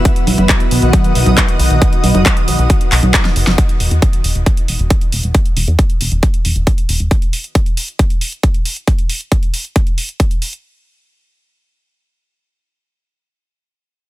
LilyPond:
<<
  \new Staff \with { instrumentName = "Ambient pad" } { \time 4/4 \key b \mixolydian \tempo 4 = 136 <dis b fis' dis''>1~ | <dis b fis' dis''>1 | r1 | r1 |
r1 | r1 | r1 | r1 | }
  \new Staff \with { instrumentName = "Analog synth bass" } { \clef bass \time 4/4 \key b \mixolydian r8 b,,16 fis,,16 r8 b,,16 b,,16 r8 b,,16 b,,16 r8 b,,16 b,,16 | r8 b,,16 fis,,16 r8 b,,16 b,,16 r8 b,,16 b,,16 r8 fis,,16 fis,,16 | r8 e,,16 e,16 r8 e,,16 e,,16 r8 e,,16 e,,16 r8 e,,16 e,,16 | r8 e,,16 e,16 r8 e,,16 e,,16 r8 e,,16 e,,16 r8 e,,16 e,,16 |
r1 | r1 | r1 | r1 | }
  \new DrumStaff \with { instrumentName = "Drums" } \drummode { \time 4/4 <hh bd>16 hh16 <cgho hho>16 <cgho hh>16 <hc hh bd>16 hh16 hho16 hh16 <cgho hh bd>16 hh16 hho16 <cgho hh>16 <hc hh bd>16 hh16 hho16 hh16 | <hh bd>16 hh16 <cgho hho>16 <cgho hh>16 <hc hh bd>16 hh16 hho16 hh16 <hh bd>16 hh16 <hc hho>16 <cgho hh>16 <hc hh bd sn>16 <hh sn>16 hho16 <hh sn>16 | <hh bd>16 hh16 hho16 hh16 <hh bd>16 hh16 hho16 hh16 <hh bd>16 hh16 hho16 hh16 <hh bd>16 hh16 hho16 hh16 | <hh bd>16 hh16 hho16 hh16 <hh bd>16 hh16 hho16 hh16 <hh bd>16 hh16 hho16 hh16 <hh bd>16 hh16 hho16 hh16 |
<hh bd>16 hh16 hho16 hh16 <hh bd>16 hh16 hho16 hh16 <hh bd>16 hh16 hho16 hh16 <hh bd>16 hh16 hho16 hh16 | <hh bd>16 hh16 hho16 hh16 <hh bd>16 hh16 hho16 hh16 <hh bd>16 hh16 hho16 hh16 <hh bd>16 hh16 hho16 hh16 | r4 r4 r4 r4 | r4 r4 r4 r4 | }
>>